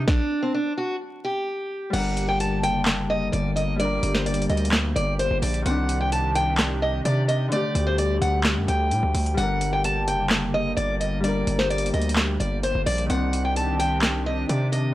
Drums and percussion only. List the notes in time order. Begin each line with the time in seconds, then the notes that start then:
0.08 kick, snare
1.94 closed hi-hat, crash
2.17 closed hi-hat
2.40 closed hi-hat
2.63 closed hi-hat
2.86 snare, clap, closed hi-hat
3.33 closed hi-hat
3.57 closed hi-hat
3.80 closed hi-hat
4.03 closed hi-hat
4.15 snare
4.26 closed hi-hat
4.34 closed hi-hat
4.42 closed hi-hat
4.50 closed hi-hat
4.57 closed hi-hat
4.65 closed hi-hat
4.72 snare, clap, closed hi-hat
4.96 closed hi-hat
5.19 closed hi-hat
5.43 closed hi-hat, open hi-hat
5.54 closed hi-hat
5.66 closed hi-hat
5.89 closed hi-hat
6.12 closed hi-hat
6.35 closed hi-hat
6.58 snare, clap, closed hi-hat
7.05 closed hi-hat
7.29 closed hi-hat
7.52 closed hi-hat
7.75 closed hi-hat
7.98 closed hi-hat
8.22 closed hi-hat
8.44 snare, clap, closed hi-hat
8.68 closed hi-hat
8.91 closed hi-hat
9.15 closed hi-hat, open hi-hat
9.26 closed hi-hat
9.38 closed hi-hat
9.61 closed hi-hat
9.84 closed hi-hat
10.08 closed hi-hat
10.30 snare, clap, closed hi-hat
10.77 closed hi-hat
11.01 closed hi-hat
11.24 closed hi-hat
11.47 closed hi-hat
11.59 snare
11.70 closed hi-hat
11.78 closed hi-hat
11.86 closed hi-hat
11.94 closed hi-hat
12.02 closed hi-hat
12.09 closed hi-hat
12.16 snare, clap, closed hi-hat
12.40 closed hi-hat
12.63 closed hi-hat
12.87 closed hi-hat, open hi-hat
12.98 closed hi-hat
13.10 closed hi-hat
13.33 closed hi-hat
13.56 closed hi-hat
13.80 closed hi-hat
14.02 snare, clap, closed hi-hat
14.49 closed hi-hat
14.73 closed hi-hat